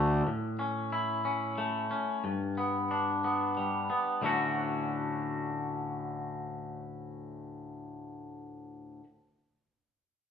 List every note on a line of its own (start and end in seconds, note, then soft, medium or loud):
0.00 0.21 D2 soft
0.00 0.25 D3 soft
0.00 0.25 A3 soft
0.00 0.25 C#4 soft
0.27 1.91 A2 soft
0.59 1.24 C#4 soft
0.92 2.24 E4 soft
1.25 1.90 C#4 soft
1.58 2.24 A3 soft
1.91 2.24 C#4 soft
2.24 3.89 G2 soft
2.58 3.23 B3 soft
2.91 4.23 D4 soft
3.24 3.89 B3 soft
3.57 4.23 G3 soft
3.90 4.22 B3 soft
4.22 9.00 D2 soft
4.22 9.01 A2 soft
4.22 9.02 D3 soft
4.22 9.03 A3 soft
4.22 9.04 C#4 soft
4.26 9.04 F#4 soft